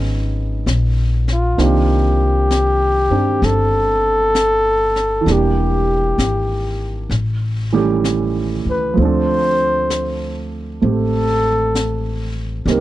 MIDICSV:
0, 0, Header, 1, 5, 480
1, 0, Start_track
1, 0, Tempo, 923077
1, 823, Time_signature, 4, 2, 24, 8
1, 6658, End_track
2, 0, Start_track
2, 0, Title_t, "Flugelhorn"
2, 0, Program_c, 0, 56
2, 689, Note_on_c, 0, 65, 69
2, 845, Note_on_c, 0, 67, 88
2, 853, Note_off_c, 0, 65, 0
2, 1794, Note_on_c, 0, 69, 102
2, 1802, Note_off_c, 0, 67, 0
2, 2770, Note_on_c, 0, 67, 80
2, 2778, Note_off_c, 0, 69, 0
2, 3715, Note_off_c, 0, 67, 0
2, 4525, Note_on_c, 0, 71, 74
2, 4666, Note_off_c, 0, 71, 0
2, 4699, Note_on_c, 0, 72, 90
2, 5459, Note_off_c, 0, 72, 0
2, 5662, Note_on_c, 0, 69, 97
2, 6419, Note_off_c, 0, 69, 0
2, 6599, Note_on_c, 0, 67, 92
2, 6658, Note_off_c, 0, 67, 0
2, 6658, End_track
3, 0, Start_track
3, 0, Title_t, "Grand piano"
3, 0, Program_c, 1, 0
3, 0, Control_c, 1, 64, 127
3, 0, Note_on_c, 1, 53, 47
3, 0, Note_on_c, 1, 56, 44
3, 0, Note_on_c, 1, 59, 37
3, 0, Note_on_c, 1, 61, 33
3, 0, Note_on_c, 1, 63, 35
3, 0, Note_on_c, 1, 68, 40
3, 0, Note_on_c, 1, 79, 52
3, 818, Note_off_c, 1, 59, 0
3, 819, Note_on_c, 1, 58, 38
3, 820, Note_on_c, 1, 51, 43
3, 821, Note_off_c, 1, 53, 0
3, 821, Note_off_c, 1, 61, 0
3, 823, Note_off_c, 1, 56, 0
3, 823, Note_off_c, 1, 79, 0
3, 823, Note_on_c, 1, 60, 37
3, 824, Note_off_c, 1, 63, 0
3, 826, Note_off_c, 1, 68, 0
3, 826, Note_on_c, 1, 62, 38
3, 828, Control_c, 1, 64, 0
3, 828, Note_on_c, 1, 65, 51
3, 919, Control_c, 1, 64, 127
3, 1607, Note_off_c, 1, 60, 0
3, 1614, Note_off_c, 1, 62, 0
3, 1615, Note_on_c, 1, 60, 37
3, 1622, Note_on_c, 1, 62, 36
3, 1631, Note_on_c, 1, 67, 41
3, 2709, Note_on_c, 1, 52, 41
3, 2727, Note_on_c, 1, 55, 38
3, 2732, Note_off_c, 1, 58, 0
3, 2739, Note_off_c, 1, 51, 0
3, 2739, Note_off_c, 1, 60, 0
3, 2740, Note_on_c, 1, 58, 38
3, 2742, Note_off_c, 1, 62, 0
3, 2743, Note_off_c, 1, 65, 0
3, 2746, Control_c, 1, 64, 0
3, 2747, Note_off_c, 1, 67, 0
3, 2751, Note_on_c, 1, 62, 36
3, 2764, Note_on_c, 1, 67, 44
3, 2846, Control_c, 1, 64, 127
3, 3685, Note_off_c, 1, 52, 0
3, 3694, Note_off_c, 1, 55, 0
3, 3700, Note_off_c, 1, 58, 0
3, 3706, Note_off_c, 1, 62, 0
3, 3708, Control_c, 1, 64, 0
3, 3713, Note_off_c, 1, 67, 0
3, 3803, Control_c, 1, 64, 127
3, 4017, Note_on_c, 1, 52, 50
3, 4020, Note_on_c, 1, 61, 43
3, 4021, Note_on_c, 1, 55, 45
3, 4021, Note_on_c, 1, 57, 44
3, 4024, Note_on_c, 1, 67, 53
3, 4647, Note_on_c, 1, 53, 43
3, 4652, Note_off_c, 1, 57, 0
3, 4660, Note_on_c, 1, 57, 41
3, 4664, Note_off_c, 1, 52, 0
3, 4666, Note_off_c, 1, 55, 0
3, 4666, Note_off_c, 1, 61, 0
3, 4668, Note_off_c, 1, 67, 0
3, 4672, Control_c, 1, 64, 0
3, 4674, Note_on_c, 1, 60, 41
3, 4691, Note_on_c, 1, 62, 39
3, 4706, Note_on_c, 1, 69, 48
3, 4777, Control_c, 1, 64, 127
3, 5616, Note_off_c, 1, 57, 0
3, 5623, Note_off_c, 1, 60, 0
3, 5624, Note_on_c, 1, 57, 36
3, 5631, Note_on_c, 1, 60, 33
3, 5640, Note_on_c, 1, 67, 37
3, 6576, Note_off_c, 1, 53, 0
3, 6582, Note_on_c, 1, 55, 38
3, 6584, Note_off_c, 1, 57, 0
3, 6587, Note_off_c, 1, 60, 0
3, 6587, Note_on_c, 1, 58, 39
3, 6592, Note_off_c, 1, 67, 0
3, 6592, Control_c, 1, 64, 0
3, 6594, Note_on_c, 1, 60, 37
3, 6598, Note_off_c, 1, 62, 0
3, 6601, Note_on_c, 1, 63, 37
3, 6605, Note_off_c, 1, 69, 0
3, 6610, Note_on_c, 1, 70, 44
3, 6658, Note_off_c, 1, 55, 0
3, 6658, Note_off_c, 1, 58, 0
3, 6658, Note_off_c, 1, 60, 0
3, 6658, Note_off_c, 1, 63, 0
3, 6658, Note_off_c, 1, 70, 0
3, 6658, End_track
4, 0, Start_track
4, 0, Title_t, "Upright bass"
4, 0, Program_c, 2, 32
4, 0, Note_on_c, 2, 32, 70
4, 326, Note_off_c, 2, 32, 0
4, 344, Note_on_c, 2, 34, 63
4, 802, Note_off_c, 2, 34, 0
4, 823, Note_on_c, 2, 36, 68
4, 1596, Note_off_c, 2, 36, 0
4, 1615, Note_on_c, 2, 43, 58
4, 1768, Note_off_c, 2, 43, 0
4, 1779, Note_on_c, 2, 31, 76
4, 2719, Note_off_c, 2, 31, 0
4, 2736, Note_on_c, 2, 28, 70
4, 3197, Note_off_c, 2, 28, 0
4, 3214, Note_on_c, 2, 32, 62
4, 3676, Note_off_c, 2, 32, 0
4, 3690, Note_on_c, 2, 33, 69
4, 4475, Note_off_c, 2, 33, 0
4, 4500, Note_on_c, 2, 37, 52
4, 4653, Note_off_c, 2, 37, 0
4, 4666, Note_on_c, 2, 38, 68
4, 5606, Note_off_c, 2, 38, 0
4, 5628, Note_on_c, 2, 33, 68
4, 6565, Note_off_c, 2, 33, 0
4, 6581, Note_on_c, 2, 36, 72
4, 6658, Note_off_c, 2, 36, 0
4, 6658, End_track
5, 0, Start_track
5, 0, Title_t, "Drums"
5, 348, Note_on_c, 9, 25, 32
5, 348, Note_on_c, 9, 38, 37
5, 348, Note_on_c, 9, 44, 42
5, 400, Note_off_c, 9, 38, 0
5, 400, Note_off_c, 9, 44, 0
5, 665, Note_on_c, 9, 38, 23
5, 717, Note_off_c, 9, 38, 0
5, 823, Note_off_c, 9, 25, 0
5, 823, Note_on_c, 9, 25, 33
5, 823, Note_on_c, 9, 38, 24
5, 875, Note_off_c, 9, 38, 0
5, 1304, Note_off_c, 9, 25, 0
5, 1304, Note_on_c, 9, 25, 34
5, 1304, Note_on_c, 9, 38, 37
5, 1304, Note_on_c, 9, 44, 47
5, 1356, Note_off_c, 9, 38, 0
5, 1356, Note_off_c, 9, 44, 0
5, 1783, Note_off_c, 9, 25, 0
5, 1783, Note_on_c, 9, 25, 29
5, 1783, Note_on_c, 9, 38, 26
5, 1835, Note_off_c, 9, 38, 0
5, 2261, Note_off_c, 9, 25, 0
5, 2261, Note_on_c, 9, 25, 36
5, 2261, Note_on_c, 9, 38, 39
5, 2261, Note_on_c, 9, 44, 50
5, 2313, Note_off_c, 9, 38, 0
5, 2313, Note_off_c, 9, 44, 0
5, 2579, Note_on_c, 9, 38, 23
5, 2631, Note_off_c, 9, 38, 0
5, 2741, Note_off_c, 9, 25, 0
5, 2741, Note_on_c, 9, 25, 28
5, 2741, Note_on_c, 9, 38, 24
5, 2793, Note_off_c, 9, 38, 0
5, 3217, Note_off_c, 9, 25, 0
5, 3217, Note_on_c, 9, 25, 30
5, 3217, Note_on_c, 9, 38, 39
5, 3217, Note_on_c, 9, 44, 45
5, 3269, Note_off_c, 9, 38, 0
5, 3269, Note_off_c, 9, 44, 0
5, 3696, Note_off_c, 9, 25, 0
5, 3696, Note_on_c, 9, 25, 38
5, 3696, Note_on_c, 9, 38, 25
5, 3748, Note_off_c, 9, 38, 0
5, 4183, Note_off_c, 9, 25, 0
5, 4183, Note_on_c, 9, 25, 31
5, 4183, Note_on_c, 9, 38, 37
5, 4183, Note_on_c, 9, 44, 48
5, 4235, Note_off_c, 9, 38, 0
5, 4235, Note_off_c, 9, 44, 0
5, 4664, Note_off_c, 9, 25, 0
5, 4664, Note_on_c, 9, 25, 29
5, 5149, Note_off_c, 9, 25, 0
5, 5149, Note_on_c, 9, 25, 35
5, 5149, Note_on_c, 9, 38, 35
5, 5149, Note_on_c, 9, 44, 46
5, 5201, Note_off_c, 9, 38, 0
5, 5201, Note_off_c, 9, 44, 0
5, 5630, Note_off_c, 9, 25, 0
5, 5630, Note_on_c, 9, 25, 33
5, 6112, Note_off_c, 9, 25, 0
5, 6112, Note_on_c, 9, 25, 34
5, 6112, Note_on_c, 9, 38, 35
5, 6112, Note_on_c, 9, 44, 51
5, 6164, Note_off_c, 9, 38, 0
5, 6164, Note_off_c, 9, 44, 0
5, 6590, Note_off_c, 9, 25, 0
5, 6590, Note_on_c, 9, 25, 32
5, 6590, Note_on_c, 9, 38, 25
5, 6642, Note_off_c, 9, 38, 0
5, 6658, Note_off_c, 9, 25, 0
5, 6658, End_track
0, 0, End_of_file